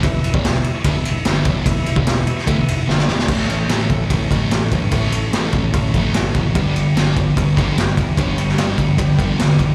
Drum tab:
CC |----------------|----------------|x---------------|----------------|
RD |x-x-x-x-x-x-x-x-|x-x-x-x-x-x-----|--x-x-x-x-x-x-x-|x-x-x-x-x-x-x-x-|
SD |----o-------o---|----o--o----oooo|-o--o-------o---|----o-------o---|
BD |o--o----o-----o-|o--o----o-------|o-----o-o-o---o-|o-----o-o-o---o-|

CC |----------------|----------------|
RD |x-x-x-x-x-x-x-x-|x-x-x-x-x-x-x-x-|
SD |----o-------o---|---oo-------o---|
BD |o-----o-o-o---o-|o-----o-o-o---o-|